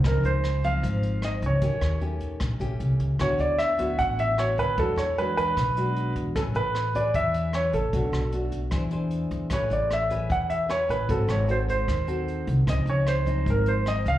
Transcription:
<<
  \new Staff \with { instrumentName = "Grand piano" } { \time 4/4 \key cis \phrygian \tempo 4 = 152 bes'8 bis'4 eis''4. dis''8 cis''8~ | cis''4 r2. | cis''8 d''8 e''4 fis''8 e''8 cis''8 b'8 | a'8 cis''8 b'8 b'2 r8 |
a'8 b'4 d''8 e''4 cis''8 a'8~ | a'4 r2. | cis''8 d''8 e''4 fis''8 e''8 cis''8 b'8 | a'8 cis''8 bis'8 bis'2 r8 |
dis''8 cis''8 bis'4 bes'8 bis'8 dis''8 eis''8 | }
  \new Staff \with { instrumentName = "Nylon-string guitar" } { \time 4/4 \key cis \phrygian << { <eis bis dis'>4 r8 <eis bis dis'>4. <eis bis dis'>4 | <a cis' g'>4 <a cis' g'>4 r8 <a cis' g'>4. | <b e' fis'>4. <b e' fis'>4. <b e' fis'>4 | <gis d' fis'>8 r8 <gis d' fis'>4 r8 <gis d' fis'>4. |
<cis' gis' b'>4 r8 <cis' gis' b'>4. <cis' gis' b'>8 r8 | <a d' fis'>8 r8 <a d' fis'>8 r8 <d' gis' bis'>8 <d' gis' bis'>4. | <cis' gis' b'>4 r8 <cis' gis' b'>4. <cis' gis' b'>4 | <bis fis' a'>4 <bis fis' a'>4 r8 <bis fis' a'>4. |
<eis bis dis'>4. <eis bis dis'>4. <eis bis dis'>8 r8 | } \\ { cis2 gis,2 | dis2 ais,2 | d2 a,2 | e2 b,2 |
a2 e2 | b,2 e2 | a2 e2 | gis2 dis2 |
cis2 gis,2 | } >> }
  \new Staff \with { instrumentName = "Upright bass" } { \clef bass \time 4/4 \key cis \phrygian r8 cis,4. gis,,4. cis,8 | dis,8 dis,4. ais,,8 ais,,8 c,8 cis,8 | d,8 d,4. a,,4. d,8 | e,8 e,4. b,,4. e,8 |
a,,8 a,,4. e,4. a,,8 | b,,8 b,,4. e,4. e,8 | a,,8 a,,4. e,4. a,,8 | gis,,8 gis,,4. dis,4. bis,,8 |
cis,8 cis,4. gis,,4. cis,8 | }
  \new DrumStaff \with { instrumentName = "Drums" } \drummode { \time 4/4 <hh bd ss>8 hh8 <hh ss>8 <hh bd>8 <hh bd>8 hh8 <hh ss>8 <hh bd>8 | <hh bd>8 <hh ss>8 hh8 <hh bd>8 <hh bd ss>8 hh8 hh8 <hh bd>8 | <hh bd ss>8 hh8 <hh ss>8 <hh bd>8 <hh bd>8 hh8 <hh ss>8 <hh bd>8 | <hh bd>8 <hh ss>8 hh8 <hh bd>8 <hh bd ss>8 hh8 hh8 <hh bd>8 |
<hh bd ss>8 hh8 <hh ss>8 <hh bd>8 <hh bd>8 hh8 <hh ss>8 <hh bd>8 | <hh bd>8 <hh ss>8 hh8 <hh bd>8 <hh bd ss>8 hh8 hh8 <hh bd>8 | <hh bd ss>8 hh8 <hh ss>8 <hh bd>8 <hh bd>8 hh8 <hh ss>8 <hh bd>8 | <hh bd>8 <hh ss>8 hh8 <hh bd>8 <hh bd ss>8 hh8 hh8 <hh bd>8 |
<hh bd ss>8 hh8 <hh ss>8 <hh bd>8 <hh bd>8 hh8 <hh ss>8 <hh bd>8 | }
>>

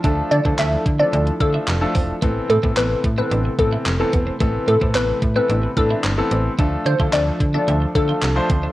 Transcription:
<<
  \new Staff \with { instrumentName = "Synth pluck" } { \time 4/4 \key a \minor \tempo 4 = 110 r8 d''16 r16 e''16 r8 d''8 r16 a'16 r4 r16 | r8 a'16 r16 b'16 r8 b'8 r16 a'16 r4 r16 | r8 a'16 r16 b'16 r8 b'8 r16 a'16 r4 r16 | r8 c''16 r16 d''16 r8 d''8 r16 a'16 r4 r16 | }
  \new Staff \with { instrumentName = "Analog synth pad" } { \time 4/4 \key a \minor << { a'1~ | a'1 | b'1 | a'1 | } \\ { <f e'>1 | <c a>1~ | <c a>1 | <f d'>1 | } >> }
  \new Staff \with { instrumentName = "Clean electric guitar" } { \time 4/4 \key a \minor d'16 r8 c'16 a16 r8 c'16 d'16 r8 e'16 r8 c'16 r16 | a16 r8 c'16 b16 r8 c'16 d'16 r8 e'16 r8 b16 c'16 | a16 r8 c'16 b16 r8 c'16 d'16 r8 e'16 r8 c'16 r16 | d'16 r8 f'16 c'16 r8 d'16 e'16 r8 f'16 r8 c'16 d'16 | }
  \new Staff \with { instrumentName = "Grand piano" } { \time 4/4 \key a \minor <f a d' a'>8 r16 <f a d' a'>8. r16 <f a d' a'>8 r16 <f a d' a'>8 r16 <f a d' a'>8 r16 | <e b c' a'>8 r16 <e b c' a'>8. r16 <e b c' a'>8 r16 <e b c' a'>8 r16 <e b c' a'>8 r16 | <e b c' a'>8 r16 <e b c' a'>8. r16 <e b c' a'>8 r16 <e b c' d'>8 r16 <e b c' a'>8 r16 | <f a d' a'>8 r16 <f a d' a'>8. r16 <f a d' a'>8 r16 <f a d' a'>8 r16 <f a d' c''>8 r16 | }
  \new Staff \with { instrumentName = "FM bass" } { \clef bass \time 4/4 \key a \minor d,8 d16 d16 d,8 d8 d,8 d8 f,,8 e,,8 | a,,8 a,16 a,16 a,,8 a,8 a,,8 a,8 f,,8 e,,8 | a,,8 a,16 a,16 a,,8 a,8 a,,8 a,8 g,,8 a,,8 | d,8 d16 d16 d,8 d8 d,8 d8 c,8 d,8 | }
  \new DrumStaff \with { instrumentName = "Drums" } \drummode { \time 4/4 <hh bd>8 hh16 bd16 <hc hh>8 <hh bd>8 hh16 hh16 <hh bd>8 <hc hh>8 <hho bd>8 | <hh bd>8 hh16 bd16 <hc hh>8 <hh bd>8 hh8 <hh bd>8 <hc hh>8 <hh bd>8 | <hh bd>8 hh16 bd16 <hc hh>8 <hh bd>8 hh8 <hh bd>8 <hc hh>8 hh8 | <hh bd>8 hh16 bd16 <hc hh>8 <hh bd>8 hh8 <hh bd>8 <hc hh>8 <hh bd>8 | }
>>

